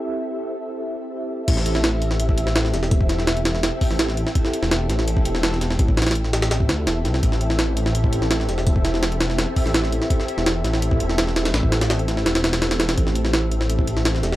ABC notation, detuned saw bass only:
X:1
M:4/4
L:1/16
Q:1/4=167
K:Am
V:1 name="Detuned saw bass" clef=bass
z16 | A,,,12- A,,,2 E,,,2- | E,,,8- E,,, z2 A,,,4 z | z3 E,,,3 A,,,4 E,,,6 |
A,,,8 A,,,2 D,,2 E,,,2 C,,2 | A,,,12- A,,,2 E,,,2- | E,,,8- E,,, z2 A,,,4 z | z3 E,,,3 A,,,4 E,,,6 |
A,,,8 E,,,8 | A,,,12- A,,,2 E,,,2 |]